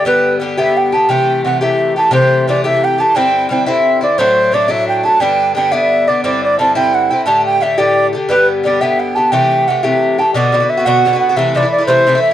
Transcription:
X:1
M:6/8
L:1/16
Q:3/8=117
K:Ador
V:1 name="Flute"
B4 z2 e2 g2 a2 | g4 f2 e4 a2 | c4 d2 e2 g2 a2 | g4 g2 e4 d2 |
c4 d2 e2 g2 a2 | g4 g2 e4 d2 | d2 d2 a2 g2 f2 g2 | a2 g2 e2 d6 |
B2 z2 d2 e2 g2 a2 | g4 f2 e4 a2 | d4 e2 f4 f2 | e2 d2 d2 c4 e2 |]
V:2 name="Bouzouki"
[G,,D,B,G]4 [G,,D,B,G]2 [G,,D,B,G]4 [D,B,G]2 | [C,E,A,G]4 [C,E,A,G]2 [C,E,A,G]4 [E,A,G]2 | [C,E,A,G]4 [C,E,A,G]2 [C,E,A,G]4 [E,A,G]2 | [G,,D,CE]4 [G,,D,CE]2 [G,,D,CE]4 [D,CE]2 |
[A,,F,A,D]4 [A,,F,A,D]2 [A,,F,A,D]4 [F,A,D]2 | [G,,D,B,D]4 [G,,D,B,D]2 [G,,D,B,D]4 [D,B,D]2 | [G,,D,CE]4 [G,,D,CE]2 [G,,D,CE]4 [D,CE]2 | [A,,D,A,G]4 [A,,D,A,G]2 [A,,D,A,G]4 [D,A,G]2 |
[G,,D,B,G]4 [G,,D,B,G]2 [G,,D,B,G]4 [D,B,G]2 | [C,E,A,G]4 [C,E,A,G]2 [C,E,A,G]4 [E,A,G]2 | [B,,D,B,F]2 [B,,D,B,F] [D,B,F]2 [D,B,F] [B,,D,B,F]2 [B,,D,B,F] [D,B,F]2 [D,B,F] | [C,E,A,E]2 [C,E,A,E] [E,A,E]2 [E,A,E] [C,E,A,E]2 [C,E,A,E] [E,A,E]2 z |]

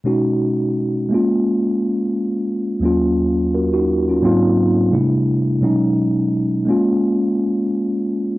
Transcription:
X:1
M:4/4
L:1/16
Q:"Swing 16ths" 1/4=86
K:Bbphr
V:1 name="Tine electric piano"
z16 | z4 [GB] [EG]2 [DF]2 z6 z | z16 |]
V:2 name="Tine electric piano"
[=B,,^G,^C^D^F]6 [A,_B,_D=F]8- [A,B,DF]2 | [E,,G,B,DF]8 [A,,G,B,=CEF]4 [=C,=G,=A,=D=E]4 | [=B,,^F,^G,^C^D]6 [A,_B,_D=F]8- [A,B,DF]2 |]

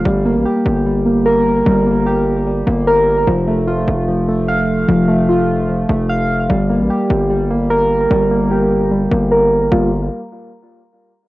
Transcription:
X:1
M:4/4
L:1/16
Q:1/4=149
K:Gm
V:1 name="Synth keys"
G,2 B,2 G4 G,2 B,2 B4 | G,2 B,2 G4 G,2 B,2 B4 | F,2 A,2 F4 F,2 A,2 f4 | F,2 A,2 F4 F,2 A,2 f4 |
G,2 B,2 G4 G,2 B,2 B4 | G,2 B,2 G4 G,2 B,2 B4 | [G,B,F]2 z12 z2 |]
V:2 name="808-style bass" clef=bass
G,,,3 A,,, z2 G,,,8- G,,,2 | G,,,8- G,,,2 G,,,6 | F,,,6 F,,,8- F,,,2 | F,,,8- F,,,2 F,,,6 |
G,,,3 A,,, z2 G,,,8- G,,,2 | G,,,8- G,,,2 G,,,6 | G,,,4 z12 |]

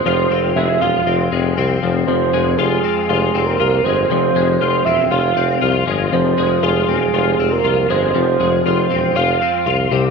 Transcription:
X:1
M:4/4
L:1/16
Q:1/4=119
K:Fm
V:1 name="Soft synth lead"
c4 =e2 f4 z6 | c4 A4 A3 B3 c2 | c4 c2 =e2 f6 z2 | c4 A2 A4- A B3 c2 |
c4 c4 f6 z2 |]
V:2 name="Clean electric guitar"
[F,,A,CF]2 C2 A,2 F2 C2 A,2 C2 F,,2 | F,,2 A,2 F2 C2 F2 C2 F2 A,2 | F,,2 A,2 F2 C2 F2 C2 F2 A,2 | F,,2 A,2 F2 C2 F2 C2 F2 A,2 |
F,,2 A,2 F2 C2 F2 C2 F2 C,2 |]
V:3 name="Tuba" clef=bass
F,,,2 F,,,2 F,,,2 =E,,,2 F,,,2 F,,,2 C,,2 F,,,2 | F,,,2 F,,,2 F,,,2 z2 F,,,2 F,,,2 C,,2 G,,,2 | F,,,2 F,,,2 F,,,2 =E,,,2 F,,,2 F,,,2 C,,2 G,,,2 | F,,,2 F,,,2 F,,,2 =E,,,2 F,,,2 F,,,2 C,,2 G,,,2 |
F,,,2 F,,,2 F,,,2 =E,,,2 F,,,2 z2 C,,2 C,,2 |]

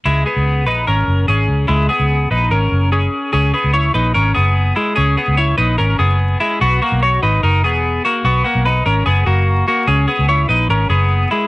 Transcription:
X:1
M:4/4
L:1/16
Q:1/4=147
K:C#dor
V:1 name="Clean electric guitar"
[G,E]2 [B,G]4 [DB]2 [CA]4 [CG]4 | [G,E]2 [B,G]4 [DB]2 [CA]4 [CG]4 | [CG]2 [B,G]2 [Ec]2 [DB]2 [CA]2 [B,G]4 [G,E]2 | [CG]2 [B,G]2 [Ec]2 [DB]2 [CA]2 [B,G]4 [G,E]2 |
[B,F]2 [A,F]2 [Fc]2 [DB]2 [DA]2 [B,G]4 [A,F]2 | [B,F]2 [A,F]2 [DB]2 [CA]2 [B,G]2 [A,F]4 [A,F]2 | [CG]2 [B,G]2 [Ec]2 [DB]2 [CA]2 [B,G]4 [G,E]2 |]
V:2 name="Fingered electric bass" clef=bass
C,,2 z C,,3 A,,,2 G,,,2 F,,,2 G,,,2 C,,2 | C,,2 z C,,3 A,,,2 G,,,2 F,,,4 z2 | C,,2 z C,,3 A,,,2 G,,,2 F,,,4 z2 | C,,2 z C,,3 A,,,2 G,,,2 F,,,4 z2 |
B,,,2 z B,,,3 G,,,2 F,,,2 E,,,4 z2 | B,,,2 z B,,,3 G,,,2 F,,,2 F,,,4 z2 | C,,2 z C,,3 A,,,2 G,,,2 F,,,4 z2 |]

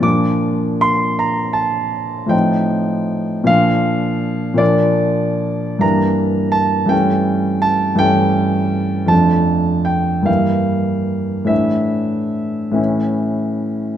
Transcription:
X:1
M:12/8
L:1/8
Q:3/8=52
K:Bb
V:1 name="Grand piano"
d'2 c' b a2 g3 f3 | [K:Aphr] d3 b2 a g2 a g3 | a2 g f3 e3 z3 |]
V:2 name="Grand piano" clef=bass
[B,,F,B,D]6 [A,,F,CE]3 [B,,F,D]3 | [K:Aphr] [B,,F,B,D]3 [G,,E,B,D]3 [G,,E,A,^C]3 [G,,E,A,C]3 | [F,,F,A,D]3 [G,,E,B,E]3 [A,,E,DE]3 [A,,E,^CE]3 |]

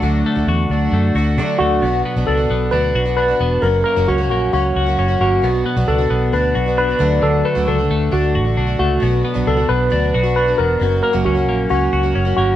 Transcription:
X:1
M:4/4
L:1/16
Q:1/4=134
K:Bm
V:1 name="Tine electric piano"
z12 z2 F2- | F2 z2 A4 B4 B4 | ^A2 A2 F2 F2 F6 F2- | F2 z2 A4 B4 B4 |
A2 B2 A4 F6 F2- | F2 z2 A2 B6 B2 ^A2- | ^A2 A2 F4 F6 F2 |]
V:2 name="Twelve-string acoustic guitar"
[F,A,DF]3 [A,DF]3 [F,A,DF]4 [F,A,DF]2 [D,F,A,DF]4 | [F,B,DF]3 [B,,F,B,DF]2 [B,DF]3 [F,B,DF]3 [B,DF]2 [B,DF]3 | [F,^A,CF]3 [F,,C,F,A,CF]2 [F,A,CF]3 [F,A,CF]3 [F,A,CF]2 [F,A,CF]3 | [F,B,DF]3 [B,,F,B,DF]2 [B,DF]3 [F,B,DF]3 [B,DF]2 [B,DF] [D,F,A,DF]2- |
[D,F,A,DF]3 [D,F,A,DF]2 [A,DF]3 [F,A,DF]3 [A,DF]2 [A,DF]3 | [F,B,DF]3 [B,,F,B,DF]2 [B,DF]3 [F,B,DF]3 [B,DF]2 [B,DF]3 | [F,^A,CF]3 [F,,C,F,A,CF]2 [F,A,CF]3 [F,A,CF]3 [F,A,CF]2 [F,A,CF]3 |]
V:3 name="Clean electric guitar"
D,2 A,2 F2 D2 A,2 F2 D2 A,2 | B,,2 B,2 D2 B,2 D2 F2 D2 B,2 | F,,2 ^A,2 C2 A,2 C2 F2 C2 A,2 | B,,2 B,2 D2 B,2 D2 F2 D2 D,2 |
D,2 A,2 D2 A,2 D2 F2 D2 A,2 | B,,2 B,2 D2 B,2 D2 F2 D2 B,2 | F,,2 ^A,2 C2 A,2 C2 F2 C2 A,2 |]
V:4 name="Fingered electric bass" clef=bass
D,,2 z D,, E,,2 D,,2 F,,2 D,,2 D,2 D,,2 | B,,,2 z B,,, C,,2 B,,,2 D,,2 B,,,4 E,,,2 | F,,,2 z F,,, C,,2 ^A,,,2 C,,2 C,,2 F,,,2 G,,,2 | B,,,2 z B,,, C,,2 B,,,2 D,,2 B,,,4 D,,2 |
D,,2 z D,, C,,2 D,,2 D,,2 A,,,2 B,,,2 C,,2 | B,,,2 z B,,, C,,2 B,,,2 D,,2 B,,,4 E,,,2 | F,,,2 z F,,, C,,2 ^A,,,2 C,,2 C,,2 F,,,2 G,,,2 |]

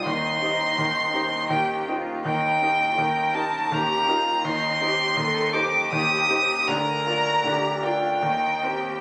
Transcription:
X:1
M:3/4
L:1/8
Q:1/4=81
K:Cdor
V:1 name="Violin"
c'4 g z | g3 a b2 | c'3 d' e'2 | b3 g3 |]
V:2 name="Cello"
E4 G F | E2 B2 G F | E G A G3 | B2 G F E G |]
V:3 name="Grand piano"
[E,,E,] [EGc] [E,,E,] [EGc] [E,,E,] [EGc] | [E,,E,] [EGB] [E,,E,] [EGB] [E,,E,] [EGB] | [E,,E,] [EGc] [E,,E,] [EGc] [E,,E,] [EGc] | [D,,D,] [FBd] [D,,D,] [FBd] [E,,E,] [CBc] |]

